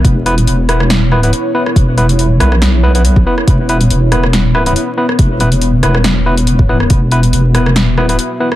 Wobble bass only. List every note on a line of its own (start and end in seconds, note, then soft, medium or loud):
0.05 0.46 E1 medium
0.47 1.06 E1 loud
1.06 1.32 D#1 loud
1.76 2.39 E1 loud
2.40 3.24 B1 medium
3.48 3.89 E1 loud
3.90 4.74 E1 loud
5.19 5.82 E1 loud
5.83 6.89 E1 medium
6.90 7.32 E1 medium
7.33 7.92 E1 medium
7.92 8.17 D#1 medium